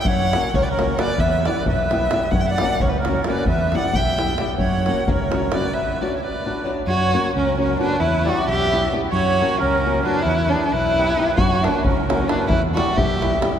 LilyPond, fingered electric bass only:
\new Staff \with { instrumentName = "Fingered electric bass" } { \clef bass \time 5/8 \key fis \phrygian \tempo 4 = 132 fis,4 cis,4. | e,4 b,,4. | fis,4 cis,4. | e,4 b,,4. |
fis,4 cis,4. | r2 r8 | fis,4 cis,4. | e,4 b,,4. |
fis,4 cis,4. | e,4 b,,4. | fis,4 cis,4. | e,4 b,,4. | }